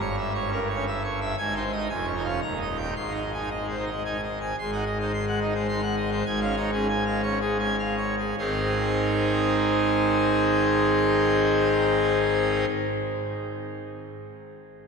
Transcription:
0.00 1.34 G1 loud
0.00 1.34 G2 loud
0.00 0.16 C#5 medium
0.18 0.33 E5 medium
0.35 0.50 C#5 medium
0.48 0.59 C#4 medium
0.53 0.68 A#4 medium
0.69 0.84 C#5 medium
0.74 0.85 C#4 medium
0.87 1.02 E5 loud
1.04 1.19 C#5 medium
1.21 1.36 E5 medium
1.38 1.89 G#1 loud
1.38 1.89 G#2 loud
1.38 1.54 G#5 loud
1.52 1.63 D#4 medium
1.56 1.71 C5 medium
1.72 1.87 D#5 medium
1.76 1.88 D#4 medium
1.89 2.41 F1 medium
1.89 2.41 F2 medium
1.89 2.06 G#5 loud
2.03 2.15 C#4 medium
2.07 2.23 C#5 medium
2.15 2.27 D#4 medium
2.24 2.40 F5 medium
2.28 2.40 C#4 medium
2.42 2.95 D#1 medium
2.42 2.94 D#2 medium
2.42 2.58 A#5 loud
2.56 2.68 D#4 medium
2.61 2.77 D#5 medium
2.77 2.93 G5 medium
2.83 2.94 D#4 medium
2.96 4.53 G#1 medium
2.96 4.54 G#2 medium
2.96 3.13 C6 loud
3.10 3.22 D#4 medium
3.14 3.31 D#5 medium
3.33 3.49 D#4 medium
3.33 3.49 G#5 medium
3.50 3.66 D#5 medium
3.63 3.76 G#3 medium
3.69 3.85 C5 medium
3.78 3.90 D#4 medium
3.86 4.02 D#5 medium
3.92 4.03 G#3 medium
4.05 4.17 D#4 medium
4.05 4.21 G#5 medium
4.23 4.39 D#5 medium
4.41 4.56 G#5 medium
4.59 6.23 G#1 loud
4.59 6.23 G#2 medium
4.59 4.71 C6 loud
4.72 4.84 D#4 medium
4.72 4.84 F#5 medium
4.86 4.98 D#5 medium
5.00 5.12 D#4 medium
5.00 5.12 C5 medium
5.14 5.25 C6 medium
5.27 5.39 G#3 medium
5.27 5.39 F#5 medium
5.41 5.53 D#4 medium
5.41 5.53 D#5 medium
5.55 5.67 G#3 medium
5.55 5.67 C5 medium
5.68 5.81 D#4 medium
5.68 5.81 C6 medium
5.82 5.95 F#5 medium
5.97 6.10 D#5 medium
6.12 6.24 C5 medium
6.26 8.34 G#1 loud
6.26 8.34 G#2 loud
6.26 6.40 G#5 loud
6.41 6.55 C#4 loud
6.41 6.55 F5 loud
6.56 6.70 D#4 medium
6.56 6.71 C#5 loud
6.72 6.87 C#4 medium
6.72 6.87 G#4 medium
6.89 7.04 G#5 loud
7.06 7.21 G#3 medium
7.06 7.21 F5 medium
7.23 7.39 C#4 loud
7.23 7.39 C#5 loud
7.41 7.57 G#3 medium
7.41 7.57 G#4 medium
7.59 7.76 C#4 medium
7.59 7.76 G#5 medium
7.79 7.96 F5 medium
7.98 8.15 C#5 medium
8.19 8.35 G#4 medium
8.38 12.65 G#1 medium
8.38 12.65 G#2 medium
8.38 12.65 D#3 medium
8.38 12.65 C4 medium
8.38 12.65 D#4 medium
8.38 12.65 G#4 medium
8.38 12.65 C5 medium

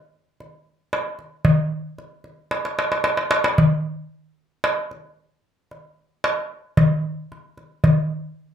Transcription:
0.40 darbuka ka soft
0.93 darbuka tek medium
1.19 darbuka ka soft
1.45 darbuka dum medium
1.98 darbuka ka soft
2.24 darbuka ka soft
2.51 darbuka tek soft
2.65 darbuka ka soft
2.79 darbuka tek medium
2.92 darbuka ka medium
3.04 darbuka tek medium
3.17 darbuka ka medium
3.31 darbuka tek medium
3.44 darbuka ka medium
3.58 darbuka dum medium
4.64 darbuka tek medium
4.91 darbuka ka soft
5.71 darbuka ka soft
6.24 darbuka tek medium
6.77 darbuka dum medium
7.32 darbuka ka soft
7.57 darbuka ka soft
7.84 darbuka dum medium

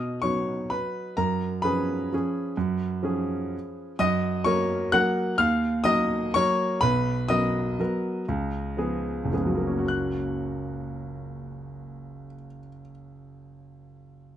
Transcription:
0.00 0.20 B2 medium
0.00 0.19 D#5 medium
0.00 0.21 D#6 medium
0.22 1.14 F#3 medium
0.22 1.14 B3 medium
0.22 1.15 D#4 medium
0.22 0.68 C#5 medium
0.22 0.71 C#6 loud
0.70 1.15 B4 medium
0.70 1.17 B5 loud
1.17 1.63 F#2 medium
1.17 1.61 A#4 medium
1.17 1.64 A#5 loud
1.62 2.08 F3 medium
1.62 2.09 C#4 medium
1.62 2.09 G#4 medium
1.62 3.95 B4 medium
1.62 3.99 B5 loud
2.12 2.55 F3 medium
2.12 2.55 C#4 medium
2.12 2.56 G#4 medium
2.57 3.03 F#2 medium
3.03 3.95 F3 medium
3.03 3.95 C#4 medium
3.03 3.96 G#4 medium
3.99 4.43 F#2 medium
3.99 4.42 D#5 loud
3.99 4.45 D#6 loud
4.44 4.89 F#3 medium
4.44 4.89 A#3 medium
4.44 4.89 A#4 medium
4.44 4.90 C#5 medium
4.44 4.92 C#6 loud
4.92 5.35 F#3 medium
4.92 5.35 A#3 medium
4.92 5.35 A#4 medium
4.92 5.36 F#5 loud
4.92 5.38 F#6 loud
5.38 5.83 D#2 medium
5.38 5.82 F5 loud
5.38 5.84 F6 loud
5.84 6.30 F#3 medium
5.84 6.30 A#3 medium
5.84 6.30 A#4 medium
5.84 6.31 D#5 loud
5.84 6.33 D#6 loud
6.34 6.79 F#3 medium
6.34 6.79 A#3 medium
6.34 6.79 A#4 medium
6.34 6.80 C#5 loud
6.34 6.82 C#6 loud
6.81 7.28 B1 medium
6.81 7.26 B4 loud
6.81 7.29 B5 loud
7.28 7.75 F#3 medium
7.28 7.75 B3 medium
7.28 7.75 A#4 medium
7.28 9.85 D#5 medium
7.28 9.88 D#6 loud
7.79 8.24 F#3 medium
7.79 8.24 B3 medium
7.79 8.24 A#4 medium
8.28 8.76 C#2 medium
8.77 9.28 F3 medium
8.77 9.28 B3 medium
8.77 9.29 G#4 medium
9.25 12.25 F#1 medium
9.33 12.35 C#2 medium
9.33 9.85 F3 medium
9.33 9.85 B3 medium
9.33 9.85 G#4 medium
9.46 12.47 F#3 medium
9.57 12.58 A#3 medium
9.67 12.68 C#4 medium
9.79 12.79 F#4 medium
9.88 12.89 F#6 medium

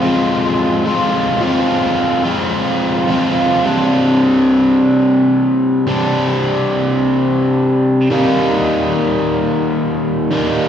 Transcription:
0.02 0.84 F3 medium
0.02 0.85 G#3 medium
0.02 0.87 C4 medium
0.02 0.84 F4 medium
0.85 1.40 F3 medium
0.85 1.41 G#3 medium
0.85 1.43 C4 medium
0.85 1.41 F4 medium
1.41 2.23 F3 medium
1.41 2.24 G#3 medium
1.41 2.25 C4 medium
1.41 2.23 F4 medium
2.24 3.07 F3 medium
2.24 3.08 G#3 medium
2.24 3.08 C4 medium
2.24 3.07 F4 medium
3.08 3.63 F3 medium
3.08 3.63 G#3 medium
3.08 3.64 C4 medium
3.08 3.64 F4 medium
3.64 5.85 C3 medium
3.64 5.87 G3 medium
3.64 5.87 C4 medium
3.64 5.87 D4 medium
5.87 8.08 C3 medium
5.87 8.10 G3 medium
5.87 8.09 C4 medium
5.87 8.10 D4 medium
8.10 10.30 D#3 medium
8.10 10.32 G3 medium
8.10 10.32 A#3 medium
8.10 10.33 D#4 medium
10.31 10.69 D#3 medium
10.31 10.69 G3 medium
10.31 10.69 A#3 medium
10.31 10.69 D#4 medium

